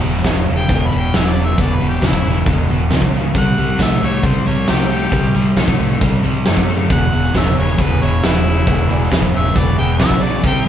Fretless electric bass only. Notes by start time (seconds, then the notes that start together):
0.04 E1
0.24 E1
0.50 E1
0.70 E1
0.94 E1
1.15 E1
1.58 E1
1.81 E1
2.02 E1
2.25 E1
2.47 E1
2.70 E1
2.91 C#2
3.35 C2
3.58 C2
3.80 C2
4.02 C2
4.24 C2
4.47 C2
4.69 C2
5.12 C2
5.35 C2
5.57 C2
5.79 C2
6.02 C2
6.24 C2
6.48 F#2
6.91 E1
7.14 E1
7.35 E1
7.58 E1
7.79 E1
8.03 E1
8.24 E1
8.68 E1
8.91 E1
9.12 E1
9.36 E1
9.56 E1
9.80 E1
10.02 B1
10.45 C2